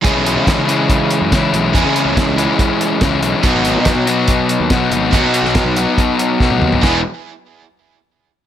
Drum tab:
CC |----------------|----------------|----------------|----------------|
HH |x-x-x-x-x-x-x-x-|x-x-x-x-x-x-x-x-|x-x-x-x-x-x-x-x-|x-x-x-x-x-x-----|
SD |----o-------o---|----o-------o---|----o-------o---|---oo-------o---|
T1 |----------------|----------------|----------------|-------------o--|
T2 |----------------|----------------|----------------|--------------o-|
FT |----------------|----------------|----------------|---------------o|
BD |o---o---o---o---|o---o---o---o---|o---o---o---o---|o---o---o---o---|

CC |x---------------|
HH |----------------|
SD |o---------------|
T1 |----------------|
T2 |----------------|
FT |----------------|
BD |o---------------|